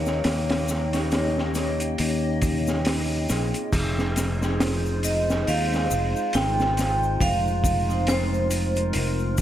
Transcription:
Already playing: D#2 A#3 D#4 G4 A#4 C#5 D#5 G5
0.06 snare, shaker
0.24 D#2 D#5, snare, open hi-hat, shaker
0.50 snare, open hi-hat
0.68 snare, shaker
0.93 C#4 D#4 G4 C#5, snare, open hi-hat, shaker
1.11 snare, open hi-hat, shaker
1.38 snare
1.55 snare, open hi-hat, shaker
1.80 closed hi-hat, shaker
1.98 D#2, open hi-hat, shaker
2.42 kick, open hi-hat, shaker
2.67 snare, shaker
2.85 snare, open hi-hat, shaker
3.29 A#1 C4 D#4 F4 G#4, snare, open hi-hat, shaker
3.54 closed hi-hat, shaker
3.73 F1 G#3 D#4 F4 C5, kick, open hi-hat, crash, shaker
3.99 snare, shaker
4.16 snare, open hi-hat, shaker
4.41 C4 D#4 F4 G#4, snare, shaker
4.60 snare, open hi-hat, shaker
4.86 shaker
5.03 D#5, open hi-hat, shaker
5.30 snare, shaker
5.47 D#2 F5, open hi-hat, shaker
5.73 snare, shaker
5.91 F1, shaker
6.16 shaker
6.33 G#1 G5, snare, open hi-hat, shaker
6.59 snare, shaker
6.77 snare, open hi-hat, shaker
7.03 shaker
7.20 F1 A#4 F5, kick, open hi-hat, shaker
7.47 shaker
7.64 kick, open hi-hat, shaker
7.89 C4 D#4 F4, shaker
7.93 C5
8.07 C5, snare, open hi-hat, shaker
8.34 shaker
8.51 open hi-hat, shaker
8.76 closed hi-hat, shaker
8.93 F1, open hi-hat, shaker
9.19 shaker
9.37 kick, open hi-hat, shaker

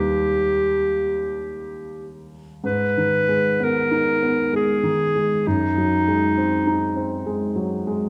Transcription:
Already playing: D#2 G3 A#3 D#4 G4
2.64 G#2 B4
2.97 D#3
3.29 G#3
3.60 B3 A#4
3.91 D#4
4.23 B3
4.53 G#3 G#4
4.83 D#3
5.16 G#3
5.47 F#2 D#4
5.78 F#3
6.08 G#3
6.37 C4
6.67 D#4
6.96 C4
7.26 G#3
7.56 F#3
7.87 G#3

